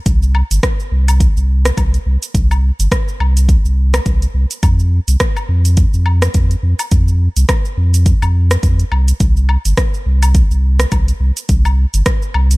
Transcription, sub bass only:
0.06 C2
0.51 G1
0.92 C2
1.37 C2
1.77 C2
2.06 C2
2.34 C2
2.79 G1
3.20 C2
3.65 C2
4.06 C2
4.34 C2
4.63 F2
5.08 C2
5.49 F2
5.94 F2
6.34 F2
6.63 F2
6.91 F2
7.36 C2
7.77 F2
8.22 F2
8.63 F2
8.92 C2
9.20 C2
9.65 G1
10.06 C2
10.51 C2
10.92 C2
11.20 C2
11.49 C2
11.94 G1
12.35 C2

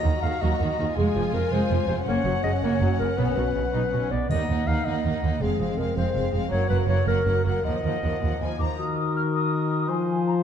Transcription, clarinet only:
Already playing: D#5
0.22 F5
0.41 D#5
0.97 G#4
1.34 A#4
1.52 C5
1.87 C5
2.07 C#5
2.44 D#5
2.62 C#5
2.99 A#4
3.18 B4
4.11 D5
4.30 D#5
4.67 F5
4.85 D#5
5.41 G#4
5.78 A#4
5.97 C5
6.51 C#5
6.70 B4
6.89 C#5
7.08 A#4
7.45 A#4
7.65 D#5
8.76 F#4
9.88 F4

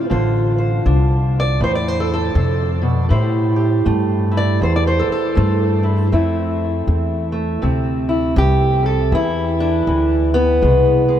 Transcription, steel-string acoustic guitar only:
Already playing: A2
0.10 D3 F4 C5
0.58 C5
0.86 D4
1.40 D5
1.61 A2 C5
1.75 D5
1.88 C5
2.00 A4
2.14 A4
2.36 C3
2.82 B2
3.09 A2 E4 G4 C5
3.56 G4
3.86 A3
4.31 E4
4.37 D5
4.61 E2 C5
4.76 D5
4.87 C5
4.99 A4
5.12 A4
5.35 A3
5.83 E4
6.12 A3 C4 E4
7.32 A3
7.62 C3 C4
8.09 E4
8.36 G2 G4
8.83 F2 A4
9.12 E2 E4
9.60 D4
9.87 E3
10.34 B3
10.62 B2 G#3
11.09 G#3

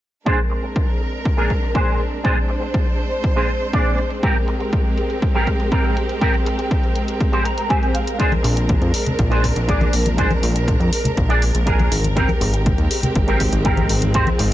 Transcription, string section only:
0.26 G#3 C4 D4 A#4
2.25 C5
4.24 G4 A#4
8.19 D4
12.16 G#3 C4 G4
14.15 F4

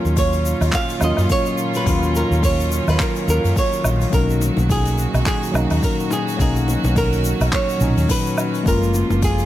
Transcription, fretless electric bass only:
0.05 D#2
0.61 D#2
1.01 D#2
1.18 F#2
1.86 D#2
2.31 D#2
2.88 D#2
3.28 D#2
3.44 F#2
3.84 A#1
4.13 B1
4.57 B1
5.14 B1
5.54 B1
5.71 D#2
6.39 B1
6.84 B1
7.40 B1
7.81 B1
7.97 D#2
8.66 F#1
9.10 F#1

